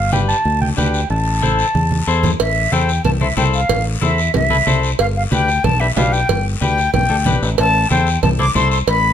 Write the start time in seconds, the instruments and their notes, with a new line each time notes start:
Already playing: fingered electric bass G1, clarinet F5
0.12 clean electric guitar D4 G4 B4, clarinet G5, high conga, short guiro
0.29 clarinet A5, short guiro
0.45 fingered electric bass D2, long guiro
0.61 clarinet G5, high conga
0.77 fingered electric bass D2, clean electric guitar D4 G4 B4, clarinet G5, high conga, short guiro
0.94 short guiro
1.10 fingered electric bass A1, clarinet A5, long guiro
1.42 clean electric guitar E4 A4 C5, high conga, short guiro
1.59 short guiro
1.75 fingered electric bass E2, high conga, long guiro
1.91 high conga
2.07 fingered electric bass E2, clean electric guitar E4 A4 C5, short guiro
2.24 low conga, short guiro
2.40 fingered electric bass A1, flute E5, cowbell, long guiro
2.72 fingered electric bass E2, clean electric guitar E4 A4 C5, flute G5, high conga, short guiro
2.89 short guiro
3.04 fingered electric bass C2, flute A5, cowbell, low conga, long guiro
3.21 clean electric guitar E4 A4 C5, flute E5, high conga
3.37 fingered electric bass C2, clean electric guitar E4 A4 C5, flute G5, high conga, short guiro
3.53 flute F5, short guiro
3.69 fingered electric bass A1, cowbell, low conga, long guiro
4.01 fingered electric bass E2, clean electric guitar E4 A4 C5, flute E5, high conga, short guiro
4.18 short guiro
4.34 fingered electric bass C2, flute E5, cowbell, low conga, long guiro
4.50 clean electric guitar E4 A4 B4, high conga
4.67 fingered electric bass C2, clean electric guitar E4 A4 C5, high conga, short guiro
4.83 short guiro
4.99 fingered electric bass G1, flute F5, cowbell, long guiro
5.17 flute F5
5.31 fingered electric bass D2, clean electric guitar D4 G4 B4, flute G5, high conga, short guiro
5.48 short guiro
5.64 fingered electric bass B1, flute A5, cowbell, low conga, long guiro
5.80 clean electric guitar D4 G4 B4, flute E5
5.96 fingered electric bass B1, clean electric guitar D4 G4 B4, flute F5, high conga, low timbale, short guiro
6.13 flute G5, short guiro
6.29 fingered electric bass G1, cowbell, low conga, long guiro
6.61 fingered electric bass D2, clean electric guitar D4 G4 B4, flute G5, high conga, short guiro
6.78 short guiro
6.93 fingered electric bass B1, flute G5, cowbell, low conga, long guiro
7.09 fingered electric bass D2, clean electric guitar D4 G4 A4
7.26 fingered electric bass B1, clean electric guitar D4 G4 B4, high conga, low conga, short guiro
7.42 fingered electric bass A1, short guiro
7.58 fingered electric bass A1, flute A5, cowbell, long guiro
7.90 fingered electric bass E2, clean electric guitar E4 A4 C5, flute G5, high conga, short guiro
8.07 short guiro
8.23 fingered electric bass C2, flute A5, cowbell, low conga, long guiro
8.39 clean electric guitar E4 A4 C5, flute D6, high conga
8.55 fingered electric bass C2, clean electric guitar E4 A4 C5, flute C6, high conga, short guiro
8.71 flute C6, short guiro
8.87 fingered electric bass A1, flute B5, cowbell, long guiro